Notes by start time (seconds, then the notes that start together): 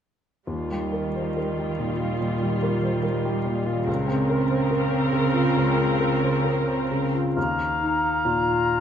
0.47 D#2 D#3 G3 F4
0.72 G3
0.93 A#4
1.15 C5
1.37 A#4
1.59 G3
1.79 A#2
2.00 F4
2.21 A#2
2.43 G3
2.63 A#4
2.83 C5
3.03 A#4
3.25 G3
3.45 A#2
3.66 F4
3.87 C#2 C#3 C4 A#4
4.08 C4
4.30 A#4
4.49 C5
4.71 A#4
4.91 C4
5.12 C#3
5.33 F4
5.56 C#2
5.77 C4
6.00 A#4
6.22 C5
6.44 A#4
6.67 C4
6.91 C#3
7.15 F4
7.36 D#2 F5 A#5
7.81 D#4
8.25 A#2 F4